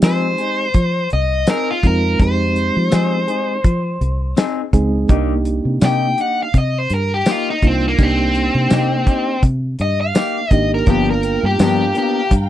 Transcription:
0.00 0.34 F3 medium
0.00 0.67 G#3 medium
0.00 0.67 C4 medium
0.00 0.26 C4 medium
0.00 0.68 D#4 medium
0.00 0.26 D#4 medium
0.00 0.68 G4 medium
0.00 1.09 C5 loud
0.00 snare loud
0.00 closed hi-hat medium
0.00 tambourine loud
0.04 0.27 G#4 medium
0.38 0.63 D#4 soft
0.38 0.62 G#4 soft
0.38 closed hi-hat medium
0.74 1.07 F3 medium
0.74 kick medium
0.74 closed hi-hat medium
1.10 1.44 C2 medium
1.10 1.47 D#5 medium
1.10 closed hi-hat medium
1.47 1.71 C4 medium
1.47 1.71 D#4 medium
1.47 1.72 G#4 medium
1.47 1.68 A#4 medium
1.47 snare medium
1.47 closed hi-hat medium
1.47 tambourine loud
1.71 1.85 F4 medium
1.83 2.16 F2 medium
1.83 2.18 G#3 medium
1.83 2.18 C4 medium
1.83 2.18 D#4 medium
1.83 2.19 F4 medium
1.83 2.21 A#4 medium
1.83 kick medium
1.83 closed hi-hat medium
2.19 2.69 F2 medium
2.19 3.57 G#3 medium
2.19 3.57 C4 medium
2.19 3.57 D#4 medium
2.19 3.57 G4 medium
2.19 4.34 C5 medium
2.19 kick loud
2.19 closed hi-hat medium
2.56 closed hi-hat medium
2.76 2.91 F3 medium
2.91 3.25 F3 medium
2.91 3.15 C4 medium
2.91 3.15 D#4 medium
2.91 3.16 G#4 medium
2.91 snare loud
2.91 closed hi-hat medium
2.91 tambourine loud
3.28 3.53 D#4 soft
3.28 3.51 G#4 medium
3.28 closed hi-hat medium
3.64 3.97 F3 medium
3.64 kick medium
3.64 closed hi-hat medium
4.01 4.33 C2 medium
4.01 closed hi-hat medium
4.37 4.60 C4 medium
4.37 4.61 D#4 medium
4.37 4.61 G#4 medium
4.37 snare loud
4.37 closed hi-hat medium
4.37 tambourine loud
4.73 5.05 C#2 medium
4.73 5.08 G#3 medium
4.73 5.08 C4 medium
4.73 5.08 D#4 medium
4.73 5.08 G#4 loud
4.73 kick medium
4.73 closed hi-hat medium
5.09 5.59 C2 medium
5.09 6.46 A#3 medium
5.09 5.33 A#3 medium
5.09 6.46 D4 medium
5.09 6.46 D#4 medium
5.09 5.33 D#4 medium
5.09 6.47 G4 medium
5.09 5.34 G4 medium
5.09 kick loud
5.09 closed hi-hat medium
5.45 closed hi-hat medium
5.65 5.80 C3 medium
5.81 6.14 C3 medium
5.81 6.05 A#3 medium
5.81 6.06 D#4 medium
5.81 6.06 G4 medium
5.81 6.19 G5 medium
5.81 snare loud
5.81 closed hi-hat medium
5.81 tambourine loud
6.18 6.43 D#4 soft
6.18 6.41 G4 medium
6.18 6.39 F#5 medium
6.18 closed hi-hat medium
6.43 6.56 F5 medium
6.54 6.86 C3 medium
6.54 kick medium
6.54 closed hi-hat medium
6.58 6.78 D#5 medium
6.78 6.92 C5 medium
6.90 7.22 G2 medium
6.90 closed hi-hat medium
6.94 7.12 A#4 loud
7.14 7.31 G4 medium
7.26 7.50 A#3 medium
7.26 7.50 D#4 medium
7.26 7.51 G4 medium
7.26 snare loud
7.26 closed hi-hat medium
7.26 tambourine loud
7.31 7.49 F4 medium
7.50 7.64 D#4 medium
7.62 7.95 C2 medium
7.62 7.97 A#3 medium
7.62 7.97 D4 medium
7.62 7.97 D#4 medium
7.62 7.97 F4 medium
7.62 kick medium
7.62 closed hi-hat medium
7.67 7.85 C4 medium
7.88 8.03 A#3 loud
7.98 8.48 C2 medium
7.98 9.35 A#3 medium
7.98 9.35 D4 medium
7.98 9.36 D#4 medium
7.98 9.36 G4 medium
7.98 kick loud
7.98 closed hi-hat medium
8.03 9.41 C4 loud
8.35 closed hi-hat medium
8.55 8.69 C3 medium
8.70 9.03 C3 medium
8.70 8.94 A#3 medium
8.70 8.95 D#4 medium
8.70 8.95 G4 medium
8.70 snare loud
8.70 closed hi-hat medium
8.70 tambourine loud
9.06 9.31 D#4 soft
9.06 9.30 G4 medium
9.06 kick medium
9.06 closed hi-hat medium
9.43 9.75 C3 medium
9.43 kick medium
9.43 closed hi-hat medium
9.79 10.11 G2 medium
9.79 10.00 D#5 medium
9.79 closed hi-hat medium
10.01 10.51 F5 medium
10.15 10.38 A#3 medium
10.15 10.39 D#4 medium
10.15 10.39 G4 medium
10.15 snare loud
10.15 closed hi-hat medium
10.15 tambourine loud
10.51 10.83 G#1 medium
10.51 10.86 A#3 medium
10.51 10.86 D4 medium
10.51 10.86 D#4 medium
10.51 10.86 G4 medium
10.51 10.70 D#5 medium
10.51 kick medium
10.51 closed hi-hat medium
10.74 10.89 A#4 medium
10.86 11.37 G1 medium
10.86 11.10 F3 medium
10.86 12.24 A#3 medium
10.86 11.11 B3 medium
10.86 12.24 B3 medium
10.86 11.11 D4 medium
10.86 12.24 D4 medium
10.86 12.24 F4 medium
10.86 11.08 G4 medium
10.86 11.11 A#4 medium
10.86 12.49 F5 medium
10.86 12.49 G5 medium
10.86 12.49 A#5 medium
10.86 kick loud
10.86 closed hi-hat medium
11.10 11.44 A#4 medium
11.23 closed hi-hat medium
11.43 11.58 G2 medium
11.43 11.96 G4 medium
11.59 11.92 G2 medium
11.59 11.83 F3 medium
11.59 11.83 B3 medium
11.59 11.83 D4 medium
11.59 11.84 A#4 medium
11.59 snare loud
11.59 closed hi-hat medium
11.59 tambourine loud
11.95 12.20 B3 soft
11.95 12.19 D4 soft
11.95 12.32 G4 medium
11.95 12.18 A#4 soft
11.95 closed hi-hat medium
12.31 12.49 G2 medium
12.31 kick medium
12.31 closed hi-hat medium

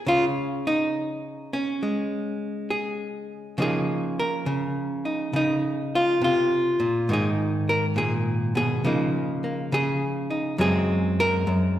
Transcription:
0.00 0.70 C#4 soft
0.07 3.54 C#3 medium
0.07 0.24 F4 medium
0.67 1.53 D#4 medium
1.53 3.58 C#4 medium
1.83 3.59 G#3 soft
2.70 3.58 G#4 medium
3.58 4.45 C#3 medium
3.58 7.05 F3 soft
3.58 7.12 A#3 soft
3.58 5.05 D#4 soft
3.62 4.18 G#4 medium
4.19 5.93 A#4 medium
4.46 5.32 C#3 medium
5.05 5.36 D#4 soft
5.33 6.21 C#3 medium
5.33 6.81 D#4 medium
5.95 6.23 F4 medium
6.21 6.79 C3 medium
6.21 7.10 F4 medium
6.80 7.09 A#2 medium
7.09 8.81 G#2 medium
7.09 8.85 D#3 soft
7.09 8.82 D#4 soft
7.13 7.29 G#4 medium
7.69 7.85 A#4 medium
7.96 8.55 A#2 medium
7.96 8.14 G#4 medium
8.55 8.84 B2 medium
8.55 9.73 G#4 medium
8.84 9.71 C#3 medium
8.84 10.57 F3 soft
8.84 9.44 A#3 soft
8.84 10.29 D#4 soft
9.44 10.59 A#3 soft
9.72 10.56 C#3 medium
9.72 10.60 G#4 medium
10.30 10.56 D#4 soft
10.58 11.46 F#2 medium
10.58 11.79 F#3 soft
10.58 11.79 G#3 soft
10.58 11.79 C4 soft
10.58 11.19 G#4 medium
11.20 11.79 A#4 medium
11.47 11.79 F#2 medium

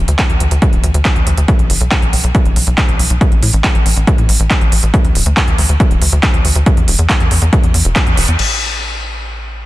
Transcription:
0.08 0.17 D2 medium
0.08 closed hi-hat medium
0.19 kick loud
0.19 clap loud
0.19 closed hi-hat soft
0.30 0.38 D2 medium
0.30 closed hi-hat soft
0.40 0.49 D2 medium
0.40 closed hi-hat medium
0.51 0.60 D2 medium
0.51 closed hi-hat soft
0.62 kick loud
0.62 closed hi-hat soft
0.73 0.81 D1 medium
0.73 closed hi-hat soft
0.84 0.92 D2 loud
0.84 closed hi-hat medium
0.94 1.03 D2 medium
0.94 closed hi-hat soft
1.05 kick loud
1.05 clap loud
1.05 closed hi-hat soft
1.16 1.24 D2 medium
1.16 closed hi-hat soft
1.27 1.35 D2 loud
1.27 closed hi-hat medium
1.38 1.46 D2 medium
1.38 closed hi-hat soft
1.48 kick loud
1.48 closed hi-hat soft
1.59 1.68 B1 medium
1.59 closed hi-hat soft
1.70 1.78 F#1 loud
1.70 open hi-hat loud
1.81 1.89 B1 medium
1.81 closed hi-hat medium
1.91 kick loud
1.91 clap loud
1.91 closed hi-hat soft
2.02 2.11 B1 medium
2.02 closed hi-hat soft
2.13 2.22 B1 medium
2.13 open hi-hat loud
2.24 2.32 B1 medium
2.24 closed hi-hat soft
2.35 kick loud
2.35 closed hi-hat soft
2.45 2.54 F#1 medium
2.45 closed hi-hat soft
2.56 2.65 B1 medium
2.56 open hi-hat loud
2.67 2.76 B1 medium
2.67 closed hi-hat soft
2.78 kick loud
2.78 clap loud
2.78 closed hi-hat soft
2.89 2.97 B1 medium
2.89 closed hi-hat soft
2.99 3.08 B1 loud
2.99 open hi-hat loud
3.10 3.19 B1 medium
3.10 closed hi-hat soft
3.21 kick loud
3.21 closed hi-hat medium
3.32 3.40 A1 medium
3.32 closed hi-hat soft
3.43 3.51 A2 loud
3.43 open hi-hat loud
3.53 3.62 A1 medium
3.53 closed hi-hat medium
3.64 kick loud
3.64 clap loud
3.64 closed hi-hat medium
3.75 3.84 A1 medium
3.75 closed hi-hat soft
3.86 3.94 A1 loud
3.86 open hi-hat loud
3.97 4.05 A1 medium
3.97 closed hi-hat medium
4.07 kick loud
4.07 closed hi-hat medium
4.18 4.27 A2 medium
4.18 closed hi-hat soft
4.29 4.37 A1 loud
4.29 open hi-hat loud
4.40 4.48 A1 medium
4.40 closed hi-hat medium
4.51 kick loud
4.51 clap loud
4.51 closed hi-hat medium
4.61 4.70 A1 medium
4.61 closed hi-hat soft
4.72 4.81 A1 loud
4.72 open hi-hat loud
4.83 4.91 A1 medium
4.83 closed hi-hat medium
4.94 kick loud
4.94 closed hi-hat medium
5.05 5.13 D2 medium
5.05 closed hi-hat soft
5.15 5.24 D1 loud
5.15 open hi-hat loud
5.26 5.35 D2 medium
5.26 closed hi-hat medium
5.37 kick loud
5.37 clap loud
5.37 closed hi-hat medium
5.48 5.56 D2 medium
5.48 closed hi-hat soft
5.58 5.67 D2 loud
5.58 open hi-hat loud
5.69 5.78 D2 medium
5.69 closed hi-hat medium
5.80 kick loud
5.80 closed hi-hat medium
5.91 5.99 D1 medium
5.91 closed hi-hat soft
6.02 6.10 D2 medium
6.02 open hi-hat loud
6.12 6.21 D2 medium
6.12 closed hi-hat medium
6.23 kick loud
6.23 clap loud
6.23 closed hi-hat medium
6.34 6.43 D2 medium
6.34 closed hi-hat soft
6.45 6.53 D2 loud
6.45 open hi-hat loud
6.56 6.64 D2 medium
6.56 closed hi-hat medium
6.66 kick loud
6.66 closed hi-hat medium
6.77 6.86 E2 medium
6.77 closed hi-hat soft
6.88 6.96 E1 loud
6.88 open hi-hat loud
6.99 7.07 E2 medium
6.99 closed hi-hat medium
7.10 kick loud
7.10 clap loud
7.10 closed hi-hat medium
7.20 7.29 E2 medium
7.20 closed hi-hat soft
7.31 7.40 E2 medium
7.31 open hi-hat loud
7.42 7.50 E2 medium
7.42 closed hi-hat medium
7.53 kick loud
7.53 closed hi-hat medium
7.63 7.72 E2 medium
7.63 closed hi-hat soft
7.74 7.83 E2 medium
7.74 open hi-hat loud
7.85 7.94 E1 medium
7.85 closed hi-hat medium
7.96 kick loud
7.96 clap loud
7.96 closed hi-hat medium
8.07 8.15 E2 medium
8.07 closed hi-hat soft
8.17 8.26 E1 loud
8.17 open hi-hat loud
8.28 8.37 E2 medium
8.28 closed hi-hat medium
8.39 9.66 A1 medium
8.39 crash medium

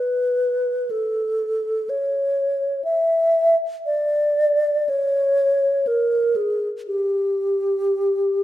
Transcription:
0.00 0.92 B4 soft
0.90 1.91 A4 soft
1.89 2.84 C#5 soft
2.84 3.55 E5 medium
3.86 4.91 D5 medium
4.89 5.89 C#5 medium
5.87 6.37 A#4 medium
6.36 6.68 G#4 soft
6.87 8.44 G4 soft

